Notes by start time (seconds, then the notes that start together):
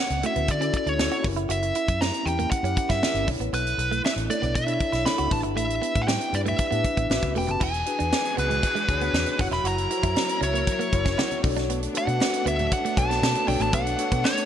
0.00 F#5
0.10 C#2, closed hi-hat
0.22 A3 C#4 E4 F#4 A4 E5, closed hi-hat, muted conga
0.36 D2 B3, closed hi-hat, low conga
0.48 D3 D5, kick, closed hi-hat, muted conga
0.60 C#4 E4 F#4 A4, closed hi-hat
0.73 D5, muted clean electric guitar stroke, kick, closed hi-hat, muted conga
0.86 D2 D4 C#5, closed hi-hat
0.98 C#4 E4 F#4 A4, snare, high conga
1.11 F#4, closed hi-hat
1.23 F#1 C#4 E4 G4 A#4, muted clean electric guitar stroke, kick, open hi-hat, high conga
1.36 E4, closed hi-hat
1.49 F#1 F#4 E5, closed hi-hat
1.63 muted clean electric guitar stroke, closed hi-hat
1.75 E4, closed hi-hat
1.88 F#2, kick, closed hi-hat
2.01 C#4 A#5, snare, high conga
2.14 closed hi-hat
2.24 E2 C#4 E4 G4 A#4 G5, muted clean electric guitar stroke, closed hi-hat, muted conga
2.39 A#3, closed hi-hat, low conga
2.51 F#5, muted fingered electric bass stroke, kick, closed hi-hat, muted conga
2.63 F#2 C#4 E4 G4 A#4, closed hi-hat
2.77 F#5, muted clean electric guitar stroke, kick, closed hi-hat, muted conga
2.89 G2 E4 E5, kick, snare, closed hi-hat
3.02 C#4 E4 G4 A#4, muted clean electric guitar stroke, snare, high conga
3.14 G1, closed hi-hat
3.27 B1 D4 E4 A4 C#5, kick, open hi-hat, high conga
3.40 A1 B3, closed hi-hat
3.53 B1 B3 B4, closed hi-hat
3.67 closed hi-hat
3.78 B1, muted clean electric guitar stroke, closed hi-hat
3.91 A3, closed hi-hat
4.04 E5, muted clean electric guitar stroke, snare, high conga
4.16 A1, closed hi-hat
4.29 A3 D4 E4 A4 C#5 D5, closed hi-hat, muted conga
4.42 B1 B3, closed hi-hat, low conga
4.55 B2 E5, kick, closed hi-hat, muted conga
4.67 D4 E4 A4 C#5, closed hi-hat
4.79 muted clean electric guitar stroke, kick, closed hi-hat, muted conga
4.92 B1 E4, snare, closed hi-hat
5.05 D4 E4 A4 C#5 B5, snare, high conga
5.18 C#2 F#4, closed hi-hat
5.31 A1 D4 E4 G4 B4 A5, muted clean electric guitar stroke, kick, open hi-hat, high conga
5.43 G1 E4, closed hi-hat
5.56 A1 A3 E5, closed hi-hat
5.69 muted clean electric guitar stroke, closed hi-hat
5.82 B3, closed hi-hat
5.96 A2, kick, closed hi-hat
6.02 F#5
6.07 G3 G5, snare, high conga
6.21 closed hi-hat
6.33 G2 D4 E4 G4 B4 D5, muted clean electric guitar stroke, closed hi-hat, muted conga
6.46 A3 E5, closed hi-hat, low conga
6.58 kick, closed hi-hat, muted conga
6.71 A2 B3 D4 E4 G4 B4, closed hi-hat
6.84 muted clean electric guitar stroke, kick, closed hi-hat, muted conga
6.97 A1 B3, kick, closed hi-hat
7.09 A1 C#4 F#4 G4 B4, muted clean electric guitar stroke, snare, high conga
7.22 C#2, kick, closed hi-hat
7.35 E1 A3 C#4 F#4 G4 B4 G5, open hi-hat, high conga
7.47 F#1 B3 A5, closed hi-hat
7.60 E1 E3 D4 E4 F#4 G#4 G#5, kick, crash
7.74 closed hi-hat
7.86 D4 F#4 G#4 B4, muted clean electric guitar stroke, closed hi-hat
7.99 E2 D4, closed hi-hat
8.12 muted clean electric guitar stroke, snare, high conga
8.25 closed hi-hat
8.37 C#2 B3 D4 F#4 G#4 B4, closed hi-hat, muted conga
8.50 G#3, closed hi-hat, low conga
8.63 kick, closed hi-hat, muted conga
8.75 G#3, closed hi-hat
8.88 D2 D4 F#4 G#4 C#5, muted clean electric guitar stroke, kick, closed hi-hat, muted conga
9.01 B3, closed hi-hat
9.13 E2, muted clean electric guitar stroke, snare, high conga
9.26 closed hi-hat, high conga
9.39 F#1 F#3 C#4 E4 F#4 A#4 C#5 F#5, kick, open hi-hat, high conga
9.51 E1 E4 B5, snare, closed hi-hat
9.64 F#1 F#4 A#5, closed hi-hat
9.78 closed hi-hat
9.91 E4 F#4 A#4 C5, muted clean electric guitar stroke, closed hi-hat
9.98 C#5
10.03 F#2 E4, kick, closed hi-hat
10.16 muted clean electric guitar stroke, snare, high conga
10.29 closed hi-hat
10.40 C#2 C#4 E4 F#4 A#4 C#5 E5, closed hi-hat, muted conga
10.54 A#3, closed hi-hat
10.67 kick, closed hi-hat, muted conga
10.79 A#3, closed hi-hat
10.92 F#1 E4 F#4 A#4 C#5, muted clean electric guitar stroke, kick, closed hi-hat, muted conga
11.05 C#4, kick, snare, closed hi-hat
11.18 E4 F#5, snare, high conga
11.31 closed hi-hat, high conga
11.43 B1 A3 B3 D4 F#4 A4 C5 D5, muted clean electric guitar stroke, kick, open hi-hat, high conga
11.50 C#5
11.57 D4, snare, closed hi-hat
11.70 B3, closed hi-hat
11.83 closed hi-hat
11.93 D4 F#4 A4 B4, muted clean electric guitar stroke, closed hi-hat
11.98 C#5 F#5
12.07 B2 D4, closed hi-hat
12.20 muted clean electric guitar stroke, snare, high conga
12.34 closed hi-hat
12.45 D2 B3 D4 F#4 A4 C#5 E5, closed hi-hat, muted conga
12.59 A3, closed hi-hat, low conga
12.72 F#5, kick, closed hi-hat, muted conga
12.85 A3, closed hi-hat
12.96 B1 D4 F#4 A4 C#5 A5, muted clean electric guitar stroke, kick, closed hi-hat, muted conga
13.10 B3, snare, closed hi-hat
13.22 B2, muted clean electric guitar stroke, snare, high conga
13.35 closed hi-hat, high conga
13.48 B1 D4 F#4 A4 C#5 G5, open hi-hat, high conga
13.60 A1 A3 A5, closed hi-hat
13.73 B1 B3 F#5, kick, closed hi-hat
13.87 closed hi-hat
13.99 D4 F#4 A4 C#5, muted clean electric guitar stroke, closed hi-hat
14.12 B2 B3, kick, closed hi-hat
14.24 C#5, muted clean electric guitar stroke, snare, high conga
14.37 closed hi-hat